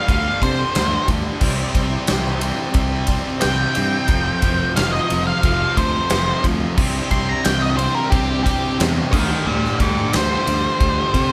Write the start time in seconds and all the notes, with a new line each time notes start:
Already playing: F5
0.08 D2 G2 D3 G3, kick, ride
0.40 G2 C3 D3 G3 C5, kick, ride
0.74 D2 G2 D3 G3, snare, ride
1.08 D2 G2 D3 G3, kick, ride
1.41 C2 C3 G3 C4 E4 C5 D5, kick, crash
1.74 C2 C3 G3 C4, kick, ride
2.07 C2 C3 G3 C4, snare, ride
2.26 snare
2.41 C3 G3 C4, ride
2.74 C2 C3 G3 C4, kick, ride
3.07 C3 G3 C4, kick, ride
3.40 C2 C3 G3 C4 G5, snare, ride
3.75 G2 C3 G3 C4, ride
4.08 F1 F2 C3 F3 F4 A4 C5, kick, ride
4.42 F1 F2 C3 F3, kick, ride
4.76 F1 F2 C3 F3 F5, snare, ride
4.93 D#5, snare
5.09 F1 F2 C3 F3, ride
5.27 F5
5.43 F1 F2 C3 F3, kick, ride
5.77 D2 F2 C3 F3 C5, kick, ride
6.10 F1 F2 C3 F3, snare, ride
6.44 D2 F2 C3 F3, kick, ride
6.76 C2 C3 G3 C4 D4 E4 C5, kick, crash
6.95 snare
7.11 C2 C3 G3 C4 C6, kick, ride
7.29 A#5
7.44 C2 C3 G3 C4 G5, snare, ride
7.62 D#5, snare
7.77 C3 G3 C4 C5, ride
7.95 A#4
8.10 C2 C3 G3 C4 G4, kick, ride
8.44 C3 G3 C4 G4, kick, ride
8.80 E2 C3 G3 C4, snare, ride
9.11 D2 G2 D3 G3 G4 C5 D#5 G5, kick, crash
9.46 D2 G2 D3 G3 D5 F5
9.64 snare
9.80 D2 G2 D3 G3 C5 D#5, kick, ride
10.13 D2 G2 D3 G3 C5, snare, ride
10.47 D2 G2 D3 G3, ride
10.79 D2 G2 D3 G3, kick, ride
11.14 G2 C3 D3 G3, kick, ride